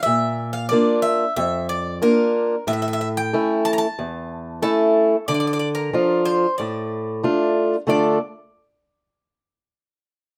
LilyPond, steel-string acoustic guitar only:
\new Staff \with { instrumentName = "Steel-string acoustic guitar" } { \time 4/4 \key d \minor \tempo 4 = 92 bes,4 <bes d' f'>4 f,4 <bes d' f'>4 | a,4 <a cis' e'>4 e,4 <a cis' e'>4 | d4 <f d' f'>4 a,4 <a d' f'>4 | <d a d' f' a'>8 r2. r8 | }